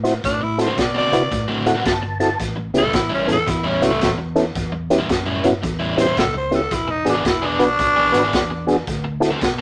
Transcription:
Already playing: A2
0.04 C4 E4 F#4 C5, snare, closed hi-hat
0.24 A2 D4, kick, snare, closed hi-hat
0.41 E4, muted overdriven electric guitar stroke
0.58 C4 E4 F#4 A4 C5, snare, closed hi-hat
0.67 D3 A3 C4 F#4
0.77 B2 D5, muted overdriven electric guitar stroke, kick, snare, closed hi-hat
0.95 D3 A3 C4 F#4 D5
1.12 C3 C4 E4 F#4 B4, snare, closed hi-hat
1.31 A2, muted overdriven electric guitar stroke, kick, snare, closed hi-hat
1.48 D3 A3 C4 F#4
1.66 C4 E4 F#4 A4 F#5, snare, closed hi-hat
1.75 D3 A3 C4 F#4
1.85 G1 A5, kick, snare, closed hi-hat
2.02 muted overdriven electric guitar stroke
2.20 C4 E4 F#4 A4 A5, snare, closed hi-hat
2.40 A1, kick, snare, closed hi-hat
2.56 muted overdriven electric guitar stroke
2.73 C#2 B3 C#4 E4 G4, snare, closed hi-hat
2.78 A4
2.82 A2 G3 C#4 E4
2.92 A1 E4, muted overdriven electric guitar stroke, kick, snare, closed hi-hat
3.10 A2 G3 C#4 E4
3.14 C#4
3.27 E2 B3 C#4 E4 A4, snare, closed hi-hat
3.32 A4
3.46 E2 E4, muted overdriven electric guitar stroke, kick, snare, closed hi-hat
3.64 A2 G3 C#4 E4
3.82 C#2 A3 B3 C#4 E4 F#4, snare, closed hi-hat
3.90 A2 G3 C#4 E4
4.01 E2, kick, snare, closed hi-hat
4.18 muted overdriven electric guitar stroke
4.36 B3 C#4 E4 A4, snare, closed hi-hat
4.55 E2, kick, snare, closed hi-hat
4.72 muted overdriven electric guitar stroke
4.90 B3 C#4 E4 G4, snare, closed hi-hat
4.98 A2 G3 C#4 E4
5.08 F#2, muted overdriven electric guitar stroke, kick, snare, closed hi-hat
5.26 A2 G3 C#4 E4
5.44 G2 B3 C#4 E4 F#4, snare, closed hi-hat
5.62 E2, muted overdriven electric guitar stroke, kick, snare, closed hi-hat
5.79 A2 G3 C#4 E4
5.97 B3 C#4 E4 G4 C5, snare, closed hi-hat
6.06 A2 G3 C#4 E4
6.17 C#2 A4, kick, snare, closed hi-hat
6.34 C5, muted overdriven electric guitar stroke
6.51 B3 C#4 E4 G4 A4, snare, closed hi-hat
6.71 E1 E4, kick, snare, closed hi-hat
6.88 D#4, muted overdriven electric guitar stroke
7.05 G#1 B3 D4 F#4 G#4, snare, closed hi-hat
7.10 D4
7.14 E3 B3 D4 G#4
7.25 E1 E4, muted overdriven electric guitar stroke, kick, snare, closed hi-hat
7.42 E3 B3 D4 G#4
7.59 B1 B3 D4 F#4 B4, snare, closed hi-hat
7.79 B1, muted overdriven electric guitar stroke, kick, snare, closed hi-hat
7.96 E3 B3 D4 G#4
8.12 G#1 B3 D4 F#4 B4, snare, closed hi-hat
8.23 E3 B3 D4 G#4
8.33 E2, kick, snare, closed hi-hat
8.50 muted overdriven electric guitar stroke
8.67 B3 D4 F#4 G#4, snare, closed hi-hat
8.87 D2, kick, snare, closed hi-hat
9.04 muted overdriven electric guitar stroke
9.20 C4 E4 F#4 A4, snare, closed hi-hat
9.31 D3 C4 F#4 A4
9.41 B2, muted overdriven electric guitar stroke, kick, snare, closed hi-hat

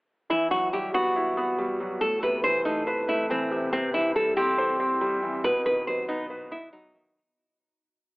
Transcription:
0.30 E2 E3 B3 E4 F#4
0.51 F#3 F#4
0.73 G3 G4
0.94 B3 F#4
1.16 E4
1.37 B3
1.58 G3
1.80 F#3
2.01 A2 C4 A4 B4
2.23 C3 B4
2.44 E3 C5
2.65 A3 D#4
2.87 B4
3.08 A3 E4
3.30 E3 C4
3.51 C3
3.73 C3 C4 E4 G4
3.94 E3 E4
4.16 G3 A4
4.37 C4 G4
4.58 C5
4.80 C4
5.01 G3
5.23 E3
5.44 B2 B3 D#4 F#4 B4
5.66 D#3 B4
5.87 F#3 C5
6.08 B3 D#4
6.30 B4
6.51 B3 E4
6.73 F#3 D#4
6.94 D#3

